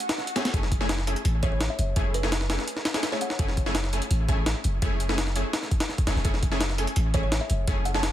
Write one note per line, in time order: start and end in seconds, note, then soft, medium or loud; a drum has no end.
0.00 closed hi-hat medium
0.00 swell medium
0.09 snare loud
0.09 closed hi-hat medium
0.18 snare soft
0.27 closed hi-hat medium
0.36 0.42 A3 loud
0.36 0.42 C#4 medium
0.36 0.42 E4 medium
0.36 0.42 G#4 loud
0.36 snare loud
0.36 closed hi-hat medium
0.45 snare loud
0.45 closed hi-hat medium
0.53 1.15 F#1 loud
0.53 0.60 A3 medium
0.53 0.60 C#4 medium
0.53 0.60 E4 medium
0.53 0.60 G#4 medium
0.53 kick loud
0.53 closed hi-hat medium
0.63 snare soft
0.72 kick loud
0.72 closed hi-hat medium
0.80 0.87 A3 loud
0.80 0.87 C#4 medium
0.80 0.87 E4 medium
0.80 0.87 G#4 loud
0.80 snare soft
0.89 snare loud
0.89 closed hi-hat medium
0.99 snare soft
1.07 1.14 A3 medium
1.07 1.14 C#4 medium
1.07 1.14 E4 medium
1.07 1.14 G#4 medium
1.07 closed hi-hat medium
1.16 closed hi-hat soft
1.25 1.68 A1 medium
1.25 closed hi-hat medium
1.43 1.94 A3 medium
1.43 1.94 C#4 medium
1.43 1.94 E4 medium
1.43 1.94 G#4 medium
1.43 1.49 C#5 medium
1.43 kick loud
1.43 closed hi-hat medium
1.52 1.58 C#5 medium
1.60 snare loud
1.60 closed hi-hat medium
1.70 1.91 E5 medium
1.79 1.95 F#1 medium
1.79 closed hi-hat medium
1.96 2.58 F#1 loud
1.96 2.21 A3 medium
1.96 2.21 C#4 medium
1.96 2.21 E4 medium
1.96 2.21 G#4 loud
1.96 kick loud
1.96 closed hi-hat medium
2.14 2.36 B4 medium
2.14 closed hi-hat medium
2.23 2.30 A3 loud
2.23 2.30 C#4 medium
2.23 2.30 E4 medium
2.23 2.30 G#4 loud
2.23 snare medium
2.32 snare loud
2.32 closed hi-hat loud
2.41 snare soft
2.50 2.60 A3 medium
2.50 2.60 C#4 medium
2.50 2.60 E4 medium
2.50 2.60 G#4 medium
2.50 snare loud
2.50 closed hi-hat medium
2.59 snare medium
2.68 closed hi-hat medium
2.77 snare soft
2.85 snare loud
2.85 closed hi-hat medium
2.94 3.01 A3 medium
2.94 3.01 C#4 medium
2.94 3.01 E4 medium
2.94 3.01 G#4 loud
2.94 snare loud
2.94 closed hi-hat medium
3.03 snare loud
3.03 closed hi-hat medium
3.12 3.19 A3 medium
3.12 3.19 C#4 medium
3.12 3.19 E4 medium
3.12 3.19 G#4 medium
3.12 3.20 C#5 medium
3.12 snare soft
3.21 3.48 F#5 medium
3.21 closed hi-hat medium
3.30 snare soft
3.39 4.00 F#1 loud
3.39 3.46 A3 medium
3.39 3.46 C#4 medium
3.39 3.46 E4 medium
3.39 3.46 G#4 medium
3.39 kick loud
3.39 closed hi-hat medium
3.48 snare soft
3.57 kick loud
3.57 closed hi-hat medium
3.66 3.73 A3 loud
3.66 3.72 C#4 medium
3.66 3.73 E4 medium
3.66 3.73 G#4 loud
3.66 snare soft
3.75 snare loud
3.75 closed hi-hat medium
3.84 snare soft
3.93 3.99 A3 medium
3.93 3.99 C#4 medium
3.93 3.99 E4 medium
3.93 3.99 G#4 medium
3.93 closed hi-hat medium
4.02 closed hi-hat soft
4.11 4.54 A1 medium
4.11 closed hi-hat medium
4.29 4.80 A3 medium
4.29 4.80 C#4 medium
4.29 4.80 E4 medium
4.29 4.80 G#4 medium
4.29 kick loud
4.29 closed hi-hat medium
4.46 snare loud
4.46 closed hi-hat medium
4.64 4.81 F#1 medium
4.64 closed hi-hat medium
4.82 5.43 F#1 loud
4.82 5.07 A3 medium
4.82 5.07 C#4 medium
4.82 5.07 E4 medium
4.82 5.07 G#4 loud
4.82 kick loud
4.82 closed hi-hat medium
5.00 closed hi-hat medium
5.09 5.15 A3 loud
5.09 5.15 C#4 medium
5.09 5.15 E4 medium
5.09 5.15 G#4 loud
5.09 snare medium
5.18 snare loud
5.18 closed hi-hat medium
5.27 snare soft
5.36 5.46 A3 medium
5.36 5.46 C#4 medium
5.36 5.46 E4 medium
5.36 5.46 G#4 medium
5.36 closed hi-hat medium
5.53 snare loud
5.53 closed hi-hat medium
5.63 snare soft
5.71 kick medium
5.71 closed hi-hat medium
5.80 snare loud
5.80 closed hi-hat medium
5.89 snare soft
5.98 kick medium
5.98 closed hi-hat medium
6.07 6.15 F#1 medium
6.07 6.14 A3 loud
6.07 6.14 C#4 medium
6.07 6.14 E4 loud
6.07 6.14 G#4 loud
6.07 snare loud
6.07 closed hi-hat medium
6.16 6.24 E1 loud
6.16 snare soft
6.25 6.86 F#1 loud
6.25 6.31 A3 medium
6.25 6.31 C#4 medium
6.25 6.31 E4 medium
6.25 6.31 G#4 medium
6.25 kick loud
6.25 closed hi-hat medium
6.34 snare soft
6.43 kick loud
6.43 closed hi-hat medium
6.52 6.58 A3 loud
6.52 6.58 C#4 medium
6.52 6.58 E4 medium
6.52 6.58 G#4 loud
6.52 snare soft
6.61 snare loud
6.61 closed hi-hat loud
6.70 snare soft
6.78 6.85 A3 medium
6.78 6.85 C#4 medium
6.78 6.85 E4 medium
6.78 6.85 G#4 medium
6.78 closed hi-hat medium
6.87 closed hi-hat soft
6.96 7.40 A1 medium
6.96 closed hi-hat medium
7.14 7.66 A3 medium
7.14 7.66 C#4 medium
7.14 7.66 E4 medium
7.14 7.66 G#4 medium
7.14 7.20 C#5 medium
7.14 kick loud
7.14 closed hi-hat medium
7.23 7.29 C#5 medium
7.32 snare loud
7.32 closed hi-hat medium
7.41 7.62 E5 medium
7.50 7.66 F#1 medium
7.50 closed hi-hat medium
7.67 8.12 F#1 loud
7.67 7.93 A3 medium
7.67 7.93 C#4 medium
7.67 7.93 E4 medium
7.67 7.93 G#4 loud
7.67 kick loud
7.67 closed hi-hat medium
7.85 7.93 F#5 loud
7.85 closed hi-hat medium
7.95 8.01 A3 loud
7.95 8.01 C#4 medium
7.95 8.01 E4 medium
7.95 8.01 G#4 loud
7.95 8.12 A5 medium
7.95 snare medium
8.03 snare loud
8.03 closed hi-hat medium